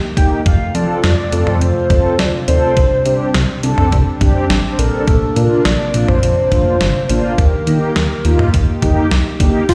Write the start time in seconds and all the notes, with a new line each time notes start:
Already playing: D#3 A#3 G4
0.17 D2 A#3 D#4 G4 G5, kick, closed hi-hat
0.46 F2 C3 A3 F4 F5, kick, closed hi-hat
0.75 F3 C4 F4 A4 D5, closed hi-hat
1.04 F2, snare, closed hi-hat
1.32 F2 C4 F4 A4, closed hi-hat
1.47 F2, mid tom
1.61 F2 C5, closed hi-hat
1.90 F2 C4 F4 A4, kick, closed hi-hat, mid tom
2.19 D2 D5, snare, closed hi-hat
2.48 D#2 C4 F4 A4 C5, closed hi-hat
2.77 C2 G3 D4, kick, closed hi-hat
3.06 C3 C4 D4 G4, closed hi-hat
3.34 C2, snare, closed hi-hat
3.63 C2 C4 D4 A4, closed hi-hat
3.78 C2, mid tom
3.92 C2, kick, closed hi-hat
4.21 C2 C4 D4 G4, kick, closed hi-hat, mid tom
4.50 A1, snare, closed hi-hat
4.72 C5
4.79 A#1 C4 D4 A4 A#4, closed hi-hat
5.07 A#1 C3 A#3 A4, kick, closed hi-hat
5.36 A#2 A#3 D4 F4 A#4, closed hi-hat
5.65 A#1 D5, snare, closed hi-hat
5.94 A#1 A#3 D4 F4, closed hi-hat
6.08 A#1 C5, mid tom
6.23 A#1 C5, closed hi-hat
6.52 A#1 A#3 D4 F4, kick, closed hi-hat, mid tom
6.81 G1, snare, closed hi-hat
7.09 A1 A#3 D4 F4, closed hi-hat
7.38 D#2 D#3 G4 A#4, kick, closed hi-hat
7.67 D#3 A#3 D#4 G4, closed hi-hat
7.96 D#2, snare, closed hi-hat
8.25 D#2 A#3 D#4 F4, closed hi-hat
8.39 D#2, mid tom
8.54 D#2, kick, closed hi-hat
8.82 D#2 A#3 D#4 G4, kick, closed hi-hat, mid tom
9.11 C2, snare, closed hi-hat
9.40 D2 A#3 D#4 G4, kick, closed hi-hat
9.69 F2 C3 A3 F4 G5, kick, closed hi-hat, crash